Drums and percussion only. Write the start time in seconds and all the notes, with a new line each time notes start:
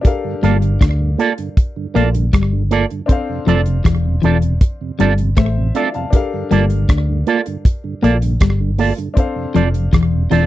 0.05 kick, closed hi-hat
0.43 closed hi-hat
0.62 closed hi-hat
0.81 kick, cross-stick, closed hi-hat
1.20 closed hi-hat
1.38 closed hi-hat
1.57 kick, closed hi-hat
1.96 closed hi-hat
2.15 closed hi-hat
2.33 kick, cross-stick, closed hi-hat
2.71 closed hi-hat
2.90 closed hi-hat
3.09 kick, closed hi-hat
3.48 closed hi-hat
3.66 closed hi-hat
3.85 kick, cross-stick, closed hi-hat
4.23 closed hi-hat
4.42 closed hi-hat
4.61 kick, closed hi-hat
5.00 closed hi-hat
5.18 closed hi-hat
5.37 kick, cross-stick, closed hi-hat
5.75 closed hi-hat
5.94 closed hi-hat
6.13 kick, closed hi-hat
6.51 closed hi-hat
6.70 closed hi-hat
6.89 kick, cross-stick, closed hi-hat
7.27 closed hi-hat
7.46 closed hi-hat
7.65 kick, closed hi-hat
8.04 closed hi-hat
8.22 closed hi-hat
8.40 kick, cross-stick, closed hi-hat
8.78 open hi-hat
8.98 closed hi-hat
9.17 kick, closed hi-hat
9.55 closed hi-hat
9.74 closed hi-hat
9.93 kick, cross-stick, closed hi-hat
10.31 closed hi-hat